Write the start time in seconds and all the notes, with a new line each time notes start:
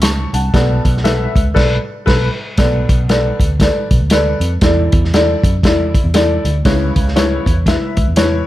Already playing: C#2
0.02 A5 C#6, snare, closed hi-hat
0.33 C2 F#5 A5, closed hi-hat
0.53 B1 B2 A4 B4 D5, kick, snare, closed hi-hat
0.85 B1, kick, closed hi-hat
0.97 snare
1.04 A4 B4 E5, snare, closed hi-hat
1.36 C#2, kick, closed hi-hat
1.54 B1 A4 B4 D5, kick, snare, crash
2.06 B1 A4 B4, kick, snare, crash
2.58 B1 B2 A4 B4 D5, kick, snare, closed hi-hat
2.89 B1, kick, closed hi-hat
3.09 A4 B4 D5, snare, closed hi-hat
3.40 D2, kick, closed hi-hat
3.60 A4 B4 D5, kick, snare, closed hi-hat
3.91 B1, kick, closed hi-hat
4.00 D2
4.10 A4 B4 D5, snare, closed hi-hat
4.40 F2, closed hi-hat
4.61 E2 E3 E4 A4 D5, kick, snare, closed hi-hat
4.92 E2, kick, closed hi-hat
5.05 snare
5.14 E4 A4 D5, snare, closed hi-hat
5.44 F#2, kick, closed hi-hat
5.63 E2 E4 A4 D5, kick, snare, closed hi-hat
5.95 kick, closed hi-hat
6.04 E2
6.14 E4 A4 D5, snare, closed hi-hat
6.45 D2, closed hi-hat
6.65 C#2 C#3 E4 B4 C#5, kick, snare, closed hi-hat
6.96 C#2, kick, closed hi-hat
7.08 snare
7.16 E4 B4 C#5, snare, closed hi-hat
7.46 E2, kick, closed hi-hat
7.66 E4 B4 E5, kick, snare, closed hi-hat
7.97 C#2, kick, closed hi-hat
8.07 E2
8.16 E4 B4 C#5, snare, closed hi-hat